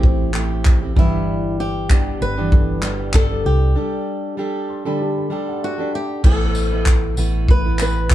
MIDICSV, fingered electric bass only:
0, 0, Header, 1, 2, 480
1, 0, Start_track
1, 0, Tempo, 621118
1, 987, Time_signature, 4, 2, 24, 8
1, 6296, End_track
2, 0, Start_track
2, 0, Title_t, "Fingered electric bass"
2, 0, Program_c, 0, 33
2, 29, Note_on_c, 0, 33, 95
2, 717, Note_off_c, 0, 33, 0
2, 747, Note_on_c, 0, 31, 97
2, 1676, Note_off_c, 0, 31, 0
2, 1707, Note_on_c, 0, 31, 93
2, 1928, Note_off_c, 0, 31, 0
2, 1948, Note_on_c, 0, 31, 95
2, 2396, Note_off_c, 0, 31, 0
2, 2428, Note_on_c, 0, 31, 95
2, 2648, Note_off_c, 0, 31, 0
2, 2667, Note_on_c, 0, 36, 81
2, 2887, Note_off_c, 0, 36, 0
2, 4823, Note_on_c, 0, 33, 100
2, 5513, Note_off_c, 0, 33, 0
2, 5545, Note_on_c, 0, 33, 103
2, 5765, Note_off_c, 0, 33, 0
2, 5785, Note_on_c, 0, 33, 107
2, 6234, Note_off_c, 0, 33, 0
2, 6267, Note_on_c, 0, 33, 93
2, 6296, Note_off_c, 0, 33, 0
2, 6296, End_track
0, 0, End_of_file